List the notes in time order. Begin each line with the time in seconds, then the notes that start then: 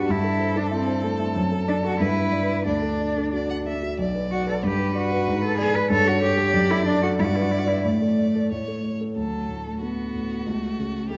Already playing: G2 D4 F#4 G4 B4 D5
0.09 G2 E4 A4
0.24 A4
0.40 C5
0.55 D4 A4
0.71 C4 E4
0.88 C5
1.04 A3
1.20 E4
1.36 F#2
1.52 A4
1.68 D4 D5
1.84 F#4 A4
2.00 G2 E4 B4
2.17 B4
2.32 D5
2.49 B4
2.65 D2 D4 D5
2.82 A4
3.00 D5
3.18 A4
3.33 F#4 D5
3.49 D5 F#5
3.67 A3 E5
3.83 F#4
3.98 B1 D5
4.14 B4
4.31 F#4 D5
4.47 A4 B4
4.63 G2 G4 B4
4.79 B4
4.95 F#4 D5
5.11 B4
5.28 G#2
5.43 A4 B4
5.58 G#4 D5
5.74 B4
5.90 G2 A4 C#5
6.06 F#4 A4
6.22 G4 C#5
6.38 A4
6.54 F#2 D5
6.70 E4 A4
6.86 D4 D5
7.03 F#4 A4
7.19 G2 E4 D5
7.26 F#4
7.35 E4 B4
7.42 F#4
7.51 E4 D5
7.59 F#4
7.67 E4 B4
7.84 A2 A3 D5
8.02 A4
8.19 D5
8.35 A4
8.51 A2 C#5
8.68 A4
8.83 C#5
9.01 A4
9.16 D2 F#3 A4
9.48 A2
9.67 A3
9.82 A3 B3 F#4
10.14 A2
10.46 C#2 A3
10.79 C#3
11.09 G3 A3 G4